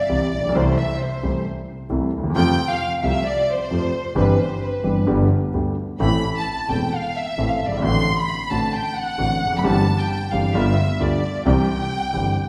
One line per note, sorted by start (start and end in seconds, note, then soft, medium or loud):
0.00 0.56 D5 medium
0.09 0.29 C2 medium
0.09 0.29 C3 medium
0.09 0.29 E3 soft
0.09 0.29 G3 soft
0.09 0.29 E4 medium
0.33 0.55 A#1 soft
0.38 0.44 A1 soft
0.43 0.50 A#1 medium
0.49 0.55 B1 medium
0.55 0.74 C2 medium
0.55 0.75 C2 medium
0.55 0.74 C3 medium
0.55 0.75 E3 medium
0.55 0.75 A3 medium
0.55 0.75 E4 medium
0.55 0.78 C5 medium
0.77 1.01 E5 medium
1.00 1.46 C5 medium
1.23 1.42 C2 medium
1.23 1.43 C2 medium
1.23 1.43 C3 soft
1.23 1.42 E3 soft
1.23 1.43 A3 soft
1.23 1.43 E4 medium
1.90 2.09 C2 medium
1.90 2.10 C2 medium
1.90 2.09 C3 medium
1.90 2.09 E3 soft
1.90 2.10 A3 soft
1.90 2.10 E4 soft
2.13 2.34 D#2 medium
2.18 2.24 D2 soft
2.24 2.30 D#2 medium
2.30 2.36 E2 medium
2.35 2.55 F2 medium
2.35 2.55 C3 medium
2.35 2.55 F3 medium
2.35 2.55 A3 medium
2.35 2.55 F4 medium
2.35 2.68 G5 loud
2.71 2.97 F5 medium
2.98 3.04 F5 medium
3.03 3.23 C2 medium
3.03 3.23 C3 medium
3.03 3.22 F3 soft
3.03 3.23 A3 soft
3.03 3.23 F4 medium
3.03 3.27 E5 medium
3.26 3.49 D5 medium
3.49 4.17 C5 medium
3.71 3.90 F2 medium
3.71 3.90 C3 soft
3.71 3.90 F3 medium
3.71 3.90 A3 soft
3.71 3.90 F4 medium
4.15 4.35 G1 medium
4.15 4.35 G2 medium
4.15 4.35 E3 medium
4.15 4.35 G3 medium
4.15 4.35 C4 medium
4.15 4.35 G4 medium
4.15 4.38 B4 medium
4.40 4.62 C5 medium
4.63 5.08 B4 medium
4.84 5.04 G1 medium
4.84 5.04 G2 medium
4.84 5.04 E3 soft
4.84 5.04 G3 soft
4.84 5.04 C4 soft
4.84 5.04 G4 soft
5.06 5.27 G1 medium
5.06 5.27 G2 medium
5.06 5.26 D3 medium
5.06 5.27 G3 medium
5.06 5.27 B3 medium
5.06 5.27 G4 medium
5.54 5.74 D2 medium
5.54 5.74 D3 soft
5.54 5.74 G3 soft
5.54 5.74 B3 soft
5.54 5.74 G4 soft
6.00 6.20 A1 medium
6.00 6.20 A2 medium
6.00 6.20 E3 medium
6.00 6.20 A3 medium
6.00 6.20 C4 medium
6.00 6.20 A4 medium
6.00 6.33 B5 medium
6.37 6.71 A5 medium
6.69 6.89 E1 medium
6.69 6.89 E2 medium
6.69 6.89 E3 soft
6.69 6.89 A3 soft
6.69 6.89 C4 soft
6.69 6.89 A4 soft
6.69 6.93 G5 medium
6.94 7.17 F5 medium
7.16 7.48 E5 medium
7.38 7.58 A1 medium
7.38 7.57 A2 medium
7.38 7.57 E3 soft
7.38 7.57 A3 soft
7.38 7.58 C4 soft
7.38 7.58 A4 soft
7.48 7.57 F5 medium
7.56 7.66 E5 medium
7.61 7.83 G1 medium
7.66 7.72 F#1 soft
7.66 7.75 D5 medium
7.71 7.78 G1 medium
7.71 7.84 E5 medium
7.77 7.83 G#1 medium
7.82 8.02 A1 medium
7.82 8.03 A1 medium
7.82 8.02 A2 medium
7.82 8.02 D3 medium
7.82 8.02 A3 medium
7.82 8.02 C4 medium
7.82 8.02 F#4 medium
7.82 8.15 C6 loud
8.18 8.52 B5 medium
8.50 8.70 A1 medium
8.50 8.71 A1 medium
8.50 8.70 A2 medium
8.50 8.70 D3 soft
8.50 8.70 A3 soft
8.50 8.70 C4 soft
8.50 8.71 F#4 soft
8.50 8.74 A5 medium
8.74 8.97 G5 medium
8.95 9.57 F#5 loud
9.18 9.38 A1 medium
9.18 9.38 A2 medium
9.18 9.38 D3 soft
9.18 9.38 A3 soft
9.18 9.38 C4 soft
9.18 9.38 F#4 soft
9.42 9.64 F1 medium
9.47 9.53 E2 soft
9.52 9.59 F2 medium
9.57 9.65 F#2 medium
9.57 9.64 B5 medium
9.64 9.83 G1 medium
9.64 9.84 G1 medium
9.64 9.84 G2 medium
9.64 9.83 E3 medium
9.64 9.83 G3 medium
9.64 9.83 C4 medium
9.64 9.84 G4 medium
9.64 9.99 A5 medium
9.98 10.32 G5 medium
10.32 10.51 G1 medium
10.32 10.51 G2 medium
10.32 10.51 E3 soft
10.32 10.51 G3 soft
10.32 10.51 C4 soft
10.32 10.52 G4 medium
10.32 10.55 F5 medium
10.54 10.74 G1 medium
10.54 10.74 G2 medium
10.54 10.74 D3 medium
10.54 10.74 G3 medium
10.54 10.74 B3 medium
10.54 10.74 F4 medium
10.54 11.00 E5 medium
11.00 11.20 D2 medium
11.00 11.20 D3 medium
11.00 11.20 G3 soft
11.00 11.20 B3 soft
11.00 11.20 F4 medium
11.00 11.46 D5 medium
11.46 11.65 C2 medium
11.46 11.65 C3 medium
11.46 11.65 E3 medium
11.46 11.65 G3 medium
11.46 11.65 C4 medium
11.46 11.65 G4 medium
11.46 12.49 G5 medium
12.13 12.33 G1 medium
12.13 12.34 G1 medium
12.13 12.33 G2 medium
12.13 12.33 E3 soft
12.13 12.33 G3 soft
12.13 12.33 C4 soft
12.13 12.33 G4 soft